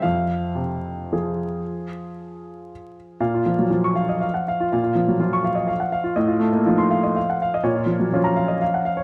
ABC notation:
X:1
M:3/4
L:1/16
Q:1/4=120
K:Fm
V:1 name="Upright piano"
f12- | f8- f2 z2 | [K:Bbm] f F F, G, F d' f e f g f F | f F F, G, F d' f e f g f F |
e F =A, B, F c' f e f g f e | d F F, G, F b f e f g f d |]
V:2 name="Upright piano" clef=bass
F,,4 C,4 [F,FA]4- | [F,FA]12 | [K:Bbm] B,,4 F,8 | B,,4 F,8 |
=A,,4 [F,E]8 | B,,4 [F,D]8 |]